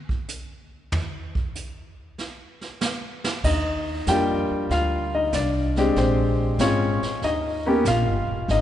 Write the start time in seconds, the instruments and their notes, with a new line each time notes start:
0.09 kick
0.28 hi-hat pedal
0.92 floor tom
1.35 kick
1.55 hi-hat pedal
2.18 snare
2.61 snare
2.81 snare, hi-hat pedal
3.24 snare
3.44 upright bass D#2, grand piano D#4 D#5, brush sweep, kick, snare, crash
4.07 upright bass F2, grand piano G3 A#3 D4 F4 G4 G5, kick, snare, hi-hat pedal
4.50 muted upright bass stroke
4.70 upright bass D2, grand piano F4 F5, brush sweep, kick, snare
5.15 grand piano D#4 D#5
5.33 upright bass C2, grand piano D4 D5, kick, snare, hi-hat pedal
5.76 grand piano G#3 C4 D4 G4, snare
5.96 upright bass A#1, grand piano C4 C5, brush sweep, kick, snare
6.59 upright bass G#1, grand piano G#3 C4 C#4 F4 C#5, kick, snare, hi-hat pedal
7.02 muted upright bass stroke, snare
7.22 upright bass D#2, grand piano D#4 D#5, brush sweep, kick, snare
7.66 grand piano A#3 B3 C#4 G4
7.85 upright bass A#1, grand piano F4 F5, kick, snare, hi-hat pedal
8.06 upright bass G1
8.27 upright bass D#1
8.48 upright bass G#1, grand piano D#4 D#5, brush sweep, kick, snare